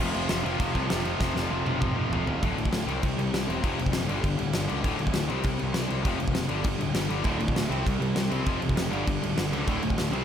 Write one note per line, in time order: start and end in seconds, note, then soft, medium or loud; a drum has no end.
0.00 0.10 F1 medium
0.00 0.13 F2 medium
0.00 0.12 C3 loud
0.00 0.12 F3 loud
0.13 0.26 F1 medium
0.13 0.28 F2 medium
0.13 0.27 C3 medium
0.13 0.29 F3 medium
0.13 crash medium
0.28 0.42 F1 medium
0.28 0.43 F2 loud
0.28 0.42 C3 loud
0.28 0.42 F3 loud
0.28 snare loud
0.28 crash medium
0.43 0.56 F1 medium
0.43 0.57 F2 medium
0.43 0.58 C3 medium
0.43 0.58 F3 medium
0.43 crash medium
0.59 0.71 F1 medium
0.59 0.74 F2 medium
0.59 0.73 C3 medium
0.59 0.72 F3 medium
0.59 kick loud
0.59 crash medium
0.74 0.87 C2 medium
0.74 0.88 F2 medium
0.74 0.88 C3 loud
0.74 0.89 F3 loud
0.74 kick medium
0.74 crash medium
0.89 1.14 F1 medium
0.89 1.04 F2 medium
0.89 1.03 C3 medium
0.89 1.03 F3 medium
0.89 snare loud
0.89 crash medium
1.04 1.19 F2 medium
1.04 1.19 C3 medium
1.04 1.20 F3 medium
1.04 crash medium
1.20 1.32 F1 medium
1.20 1.36 F2 loud
1.20 1.35 C3 loud
1.20 1.35 F3 loud
1.20 kick loud
1.20 snare medium
1.35 1.47 F1 medium
1.35 1.50 F2 medium
1.35 1.50 C3 medium
1.35 1.51 F3 medium
1.35 snare medium
1.51 1.63 F1 medium
1.51 1.65 F2 medium
1.51 1.65 C3 loud
1.51 1.65 F3 loud
1.66 1.77 F1 medium
1.66 1.79 F2 medium
1.66 1.79 C3 medium
1.66 1.80 F3 loud
1.66 high tom medium
1.80 2.04 F1 medium
1.80 1.95 F2 medium
1.80 1.95 C3 medium
1.80 1.95 F3 medium
1.80 kick loud
1.80 mid tom medium
1.96 2.11 F2 medium
1.96 2.11 C3 loud
1.96 2.12 F3 loud
2.10 2.22 F1 medium
2.10 2.27 F2 medium
2.10 2.26 C3 medium
2.10 2.26 F3 medium
2.10 floor tom loud
2.25 2.37 D1 medium
2.25 2.42 F2 medium
2.25 2.41 C3 medium
2.25 2.41 F3 medium
2.25 floor tom medium
2.42 2.54 D1 medium
2.42 2.56 D2 medium
2.42 2.56 A2 medium
2.42 2.57 D3 loud
2.42 kick loud
2.42 crash medium
2.56 2.68 D1 medium
2.56 2.71 D2 medium
2.56 2.71 A2 medium
2.56 crash medium
2.65 kick medium
2.71 2.84 D1 medium
2.71 2.86 D2 medium
2.71 2.86 A2 medium
2.71 snare loud
2.71 crash medium
2.87 2.99 C2 medium
2.87 3.02 C3 medium
2.87 3.02 G3 loud
2.87 3.02 C4 loud
2.87 crash medium
3.03 3.15 C2 medium
3.03 3.16 C3 medium
3.03 3.16 G3 medium
3.03 kick loud
3.03 crash medium
3.17 3.29 C2 medium
3.17 3.32 C3 medium
3.17 3.32 G3 medium
3.17 crash medium
3.33 3.45 C2 medium
3.33 3.46 C3 medium
3.33 3.47 G3 medium
3.33 3.63 C4 medium
3.33 snare loud
3.33 crash medium
3.47 3.60 E1 medium
3.47 3.62 C3 medium
3.47 3.62 G3 loud
3.47 3.63 C4 loud
3.47 crash medium
3.63 3.75 F1 medium
3.63 3.77 F2 medium
3.63 3.78 C3 medium
3.63 3.78 F3 loud
3.63 kick loud
3.63 crash medium
3.79 3.91 F1 medium
3.79 3.91 F2 medium
3.79 3.92 C3 medium
3.79 crash medium
3.86 kick medium
3.92 4.06 F#1 medium
3.92 4.06 F2 medium
3.92 4.07 C3 medium
3.92 snare loud
3.92 crash medium
4.09 4.22 G1 medium
4.09 4.23 G2 medium
4.09 4.23 D3 loud
4.09 4.23 G3 loud
4.09 crash medium
4.24 4.35 G1 medium
4.24 4.36 G2 medium
4.24 4.37 D3 medium
4.24 kick loud
4.24 crash medium
4.38 4.52 D1 medium
4.38 4.52 G2 medium
4.38 4.52 D3 medium
4.38 crash medium
4.53 4.67 G1 medium
4.53 4.67 G2 medium
4.53 4.68 D3 medium
4.53 4.84 G3 medium
4.53 snare loud
4.53 crash medium
4.68 4.85 C#2 medium
4.68 4.83 G2 medium
4.68 4.83 D3 loud
4.68 4.83 G3 loud
4.68 crash medium
4.83 4.95 D1 medium
4.83 4.97 D2 medium
4.83 4.98 A2 medium
4.83 4.99 D3 loud
4.83 kick loud
4.83 crash medium
4.99 5.12 D1 medium
4.99 5.12 D2 medium
4.99 5.12 A2 medium
4.99 crash medium
5.07 kick medium
5.13 5.27 D1 medium
5.13 5.27 D2 medium
5.13 5.28 A2 medium
5.13 snare loud
5.13 crash medium
5.28 5.42 C2 medium
5.28 5.43 C3 loud
5.28 5.44 G3 loud
5.28 5.44 C4 loud
5.28 crash medium
5.43 5.56 C2 medium
5.43 5.57 C3 medium
5.43 5.57 G3 medium
5.43 kick loud
5.43 crash medium
5.58 5.72 C3 medium
5.58 5.73 G3 medium
5.58 crash medium
5.62 5.73 C2 medium
5.73 5.88 C2 medium
5.73 5.86 C3 medium
5.73 5.87 G3 medium
5.73 6.05 C4 medium
5.73 snare loud
5.73 crash medium
5.88 6.02 C2 medium
5.88 6.03 C3 loud
5.88 6.03 G3 loud
5.88 6.03 C4 medium
5.88 crash medium
6.04 6.17 F1 medium
6.04 6.17 F2 medium
6.04 6.18 C3 medium
6.04 6.19 F3 loud
6.04 kick loud
6.04 crash medium
6.19 6.32 F1 medium
6.19 6.33 F2 medium
6.19 6.33 C3 medium
6.19 crash medium
6.28 kick medium
6.34 6.47 F#1 medium
6.34 6.48 F2 medium
6.34 6.48 C3 medium
6.34 snare loud
6.34 crash medium
6.49 6.62 G1 medium
6.49 6.62 G2 medium
6.49 6.63 D3 medium
6.49 6.65 G3 loud
6.49 crash medium
6.63 6.77 G1 medium
6.63 6.77 G2 medium
6.63 6.78 D3 medium
6.63 kick loud
6.63 crash medium
6.79 6.92 D1 medium
6.79 6.93 G2 medium
6.79 6.93 D3 medium
6.79 crash medium
6.94 7.06 G1 medium
6.94 7.08 G2 medium
6.94 7.08 D3 medium
6.94 7.25 G3 medium
6.94 snare loud
6.94 crash medium
7.09 7.22 G1 medium
7.09 7.23 G2 medium
7.09 7.24 D3 medium
7.09 7.25 G3 loud
7.09 crash medium
7.24 7.37 D1 medium
7.24 7.38 D2 medium
7.24 7.38 A2 medium
7.24 7.40 D3 loud
7.24 kick loud
7.24 crash medium
7.39 7.52 D1 medium
7.39 7.54 D2 medium
7.39 7.54 A2 medium
7.39 crash medium
7.48 kick medium
7.55 7.68 D1 medium
7.55 7.68 D2 medium
7.55 7.69 A2 medium
7.55 snare loud
7.55 crash medium
7.68 7.82 C2 medium
7.68 7.83 C3 medium
7.68 7.83 G3 loud
7.68 7.85 C4 loud
7.68 crash medium
7.84 7.98 C2 medium
7.84 7.99 C3 medium
7.84 7.99 G3 medium
7.84 kick loud
7.84 crash medium
8.00 8.12 C2 medium
8.00 8.14 C3 medium
8.00 8.14 G3 medium
8.00 crash medium
8.15 8.28 C2 medium
8.15 8.29 C3 medium
8.15 8.29 G3 medium
8.15 snare loud
8.15 crash medium
8.19 8.47 C4 medium
8.30 8.43 C2 medium
8.30 8.44 C3 medium
8.30 8.45 G3 loud
8.30 8.45 C4 loud
8.30 crash medium
8.46 8.58 F1 medium
8.46 8.59 F2 loud
8.46 8.60 C3 medium
8.46 8.61 F3 medium
8.46 kick loud
8.46 crash medium
8.61 8.74 F1 medium
8.61 8.75 F2 medium
8.61 8.75 C3 medium
8.61 crash medium
8.69 kick medium
8.76 8.88 F1 medium
8.76 8.90 F2 medium
8.76 8.90 C3 medium
8.76 snare loud
8.76 crash medium
8.90 9.04 G1 medium
8.90 9.04 G2 medium
8.90 9.05 D3 loud
8.90 9.06 G3 loud
8.90 crash medium
9.06 9.19 G1 medium
9.06 9.20 G2 medium
9.06 9.20 D3 medium
9.06 kick loud
9.06 crash medium
9.22 9.34 D1 medium
9.22 9.36 G2 medium
9.22 9.36 D3 medium
9.22 crash medium
9.37 9.49 G1 medium
9.37 9.51 G2 medium
9.37 9.51 D3 medium
9.37 9.67 G3 medium
9.37 snare loud
9.37 crash medium
9.52 9.64 C#2 medium
9.52 9.67 G2 medium
9.52 9.67 D3 loud
9.52 9.67 G3 loud
9.52 crash medium
9.67 9.79 D1 medium
9.67 9.81 D2 medium
9.67 9.82 A2 medium
9.67 9.82 D3 loud
9.67 kick loud
9.67 crash medium
9.83 9.94 D1 medium
9.83 9.96 D2 medium
9.83 9.97 A2 medium
9.83 crash medium
9.90 kick medium
9.98 10.10 D1 medium
9.98 10.11 D2 medium
9.98 10.12 A2 medium
9.98 snare loud
9.98 crash medium
10.12 10.24 C2 medium
10.12 10.24 C3 loud
10.12 10.24 G3 loud
10.12 10.24 C4 loud
10.12 crash medium